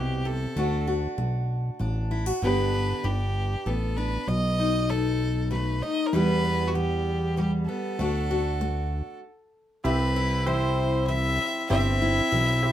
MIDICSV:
0, 0, Header, 1, 6, 480
1, 0, Start_track
1, 0, Tempo, 618557
1, 435, Time_signature, 3, 2, 24, 8
1, 9871, End_track
2, 0, Start_track
2, 0, Title_t, "Pedal steel guitar"
2, 0, Program_c, 0, 26
2, 8121, Note_on_c, 0, 67, 63
2, 8127, Note_on_c, 0, 72, 61
2, 8135, Note_on_c, 0, 76, 63
2, 9871, Note_off_c, 0, 67, 0
2, 9871, Note_off_c, 0, 72, 0
2, 9871, Note_off_c, 0, 76, 0
2, 9871, End_track
3, 0, Start_track
3, 0, Title_t, "Fiddle"
3, 0, Program_c, 1, 110
3, 0, Note_on_c, 1, 67, 78
3, 203, Note_on_c, 1, 69, 84
3, 215, Note_off_c, 1, 67, 0
3, 679, Note_off_c, 1, 69, 0
3, 1889, Note_on_c, 1, 71, 96
3, 2366, Note_on_c, 1, 67, 85
3, 2377, Note_off_c, 1, 71, 0
3, 2848, Note_on_c, 1, 69, 80
3, 2859, Note_off_c, 1, 67, 0
3, 3078, Note_on_c, 1, 71, 88
3, 3090, Note_off_c, 1, 69, 0
3, 3321, Note_on_c, 1, 75, 104
3, 3332, Note_off_c, 1, 71, 0
3, 3803, Note_on_c, 1, 69, 93
3, 3815, Note_off_c, 1, 75, 0
3, 4277, Note_off_c, 1, 69, 0
3, 4282, Note_on_c, 1, 71, 77
3, 4519, Note_on_c, 1, 75, 91
3, 4531, Note_off_c, 1, 71, 0
3, 4708, Note_on_c, 1, 70, 70
3, 4720, Note_off_c, 1, 75, 0
3, 4762, Note_on_c, 1, 71, 103
3, 4774, Note_off_c, 1, 70, 0
3, 5183, Note_on_c, 1, 66, 63
3, 5195, Note_off_c, 1, 71, 0
3, 5235, Note_on_c, 1, 67, 81
3, 5247, Note_off_c, 1, 66, 0
3, 5717, Note_off_c, 1, 67, 0
3, 5721, Note_on_c, 1, 67, 65
3, 5828, Note_off_c, 1, 67, 0
3, 5945, Note_on_c, 1, 69, 80
3, 7121, Note_off_c, 1, 69, 0
3, 7635, Note_on_c, 1, 71, 96
3, 8117, Note_on_c, 1, 72, 95
3, 8129, Note_off_c, 1, 71, 0
3, 8587, Note_off_c, 1, 72, 0
3, 8591, Note_on_c, 1, 76, 107
3, 9042, Note_off_c, 1, 76, 0
3, 9080, Note_on_c, 1, 76, 115
3, 9871, Note_off_c, 1, 76, 0
3, 9871, End_track
4, 0, Start_track
4, 0, Title_t, "Upright piano"
4, 0, Program_c, 2, 0
4, 7635, Note_on_c, 2, 67, 56
4, 7636, Note_on_c, 2, 64, 65
4, 7637, Note_on_c, 2, 76, 75
4, 7638, Note_on_c, 2, 60, 57
4, 9046, Note_off_c, 2, 64, 0
4, 9046, Note_off_c, 2, 67, 0
4, 9047, Note_off_c, 2, 60, 0
4, 9047, Note_off_c, 2, 76, 0
4, 9078, Note_on_c, 2, 67, 67
4, 9079, Note_on_c, 2, 72, 61
4, 9080, Note_on_c, 2, 64, 72
4, 9082, Note_on_c, 2, 76, 72
4, 9784, Note_off_c, 2, 64, 0
4, 9786, Note_off_c, 2, 67, 0
4, 9786, Note_off_c, 2, 72, 0
4, 9787, Note_off_c, 2, 76, 0
4, 9796, Note_on_c, 2, 64, 67
4, 9797, Note_on_c, 2, 67, 57
4, 9797, Note_on_c, 2, 72, 52
4, 9798, Note_on_c, 2, 76, 71
4, 9871, Note_off_c, 2, 64, 0
4, 9871, Note_off_c, 2, 67, 0
4, 9871, Note_off_c, 2, 72, 0
4, 9871, Note_off_c, 2, 76, 0
4, 9871, End_track
5, 0, Start_track
5, 0, Title_t, "Steel-string acoustic guitar"
5, 0, Program_c, 3, 25
5, 0, Note_on_c, 3, 47, 49
5, 0, Note_on_c, 3, 60, 52
5, 192, Note_off_c, 3, 47, 0
5, 195, Note_on_c, 3, 48, 53
5, 410, Note_off_c, 3, 60, 0
5, 435, Note_off_c, 3, 48, 0
5, 439, Note_on_c, 3, 50, 72
5, 442, Note_on_c, 3, 57, 55
5, 448, Note_on_c, 3, 62, 58
5, 457, Note_on_c, 3, 66, 52
5, 669, Note_off_c, 3, 66, 0
5, 678, Note_on_c, 3, 66, 63
5, 869, Note_off_c, 3, 50, 0
5, 905, Note_off_c, 3, 57, 0
5, 915, Note_on_c, 3, 57, 58
5, 1347, Note_off_c, 3, 57, 0
5, 1390, Note_off_c, 3, 62, 0
5, 1392, Note_on_c, 3, 57, 51
5, 1399, Note_on_c, 3, 62, 52
5, 1634, Note_off_c, 3, 66, 0
5, 1637, Note_on_c, 3, 64, 58
5, 1754, Note_off_c, 3, 64, 0
5, 1754, Note_on_c, 3, 66, 50
5, 1826, Note_off_c, 3, 57, 0
5, 1849, Note_off_c, 3, 62, 0
5, 1875, Note_off_c, 3, 66, 0
5, 1877, Note_on_c, 3, 43, 64
5, 1883, Note_on_c, 3, 50, 56
5, 1888, Note_on_c, 3, 59, 56
5, 1895, Note_on_c, 3, 62, 56
5, 1901, Note_on_c, 3, 67, 57
5, 2116, Note_off_c, 3, 62, 0
5, 2125, Note_on_c, 3, 62, 49
5, 2309, Note_off_c, 3, 43, 0
5, 2350, Note_off_c, 3, 50, 0
5, 2360, Note_on_c, 3, 50, 62
5, 2790, Note_off_c, 3, 50, 0
5, 2841, Note_on_c, 3, 50, 54
5, 2843, Note_off_c, 3, 59, 0
5, 2847, Note_on_c, 3, 59, 50
5, 3076, Note_off_c, 3, 62, 0
5, 3085, Note_on_c, 3, 62, 52
5, 3271, Note_off_c, 3, 50, 0
5, 3292, Note_off_c, 3, 62, 0
5, 3301, Note_off_c, 3, 67, 0
5, 3324, Note_on_c, 3, 47, 68
5, 3566, Note_on_c, 3, 63, 52
5, 3753, Note_off_c, 3, 47, 0
5, 3798, Note_on_c, 3, 51, 63
5, 4230, Note_off_c, 3, 51, 0
5, 4273, Note_on_c, 3, 51, 55
5, 4276, Note_off_c, 3, 59, 0
5, 4279, Note_on_c, 3, 57, 51
5, 4513, Note_off_c, 3, 63, 0
5, 4523, Note_on_c, 3, 63, 55
5, 4708, Note_off_c, 3, 51, 0
5, 4730, Note_off_c, 3, 57, 0
5, 4732, Note_off_c, 3, 63, 0
5, 4756, Note_on_c, 3, 40, 70
5, 4762, Note_on_c, 3, 52, 60
5, 4765, Note_on_c, 3, 55, 57
5, 4772, Note_on_c, 3, 59, 61
5, 4780, Note_on_c, 3, 67, 58
5, 4994, Note_off_c, 3, 59, 0
5, 5003, Note_on_c, 3, 59, 57
5, 5190, Note_off_c, 3, 40, 0
5, 5230, Note_off_c, 3, 52, 0
5, 5240, Note_on_c, 3, 52, 58
5, 5672, Note_off_c, 3, 52, 0
5, 5718, Note_off_c, 3, 55, 0
5, 5721, Note_on_c, 3, 52, 54
5, 5728, Note_on_c, 3, 55, 49
5, 5955, Note_off_c, 3, 59, 0
5, 5965, Note_on_c, 3, 59, 52
5, 6152, Note_off_c, 3, 52, 0
5, 6182, Note_off_c, 3, 67, 0
5, 6201, Note_on_c, 3, 50, 68
5, 6202, Note_off_c, 3, 59, 0
5, 6204, Note_off_c, 3, 55, 0
5, 6208, Note_on_c, 3, 57, 56
5, 6213, Note_on_c, 3, 62, 60
5, 6217, Note_on_c, 3, 66, 62
5, 6437, Note_off_c, 3, 66, 0
5, 6447, Note_on_c, 3, 66, 67
5, 6633, Note_off_c, 3, 50, 0
5, 6672, Note_off_c, 3, 57, 0
5, 6681, Note_on_c, 3, 57, 67
5, 7112, Note_off_c, 3, 57, 0
5, 7134, Note_off_c, 3, 66, 0
5, 7137, Note_off_c, 3, 62, 0
5, 7642, Note_on_c, 3, 48, 79
5, 7648, Note_on_c, 3, 60, 63
5, 7885, Note_on_c, 3, 64, 70
5, 8072, Note_off_c, 3, 48, 0
5, 8122, Note_on_c, 3, 52, 73
5, 8552, Note_off_c, 3, 52, 0
5, 8602, Note_on_c, 3, 52, 67
5, 9031, Note_off_c, 3, 52, 0
5, 9052, Note_off_c, 3, 60, 0
5, 9077, Note_on_c, 3, 48, 74
5, 9082, Note_on_c, 3, 60, 66
5, 9317, Note_off_c, 3, 64, 0
5, 9326, Note_on_c, 3, 64, 71
5, 9507, Note_off_c, 3, 48, 0
5, 9560, Note_on_c, 3, 52, 74
5, 9871, Note_off_c, 3, 52, 0
5, 9871, Note_off_c, 3, 60, 0
5, 9871, Note_off_c, 3, 64, 0
5, 9871, End_track
6, 0, Start_track
6, 0, Title_t, "Analog synth bass"
6, 0, Program_c, 4, 38
6, 0, Note_on_c, 4, 36, 83
6, 366, Note_off_c, 4, 36, 0
6, 437, Note_on_c, 4, 38, 88
6, 838, Note_off_c, 4, 38, 0
6, 915, Note_on_c, 4, 35, 74
6, 1324, Note_off_c, 4, 35, 0
6, 1396, Note_on_c, 4, 33, 92
6, 1804, Note_off_c, 4, 33, 0
6, 1882, Note_on_c, 4, 31, 86
6, 2281, Note_off_c, 4, 31, 0
6, 2358, Note_on_c, 4, 31, 88
6, 2766, Note_off_c, 4, 31, 0
6, 2841, Note_on_c, 4, 33, 76
6, 3248, Note_off_c, 4, 33, 0
6, 3318, Note_on_c, 4, 35, 92
6, 4523, Note_off_c, 4, 35, 0
6, 4756, Note_on_c, 4, 40, 93
6, 5962, Note_off_c, 4, 40, 0
6, 6200, Note_on_c, 4, 38, 96
6, 7002, Note_off_c, 4, 38, 0
6, 7642, Note_on_c, 4, 36, 95
6, 8842, Note_off_c, 4, 36, 0
6, 9081, Note_on_c, 4, 31, 98
6, 9479, Note_off_c, 4, 31, 0
6, 9563, Note_on_c, 4, 35, 82
6, 9871, Note_off_c, 4, 35, 0
6, 9871, End_track
0, 0, End_of_file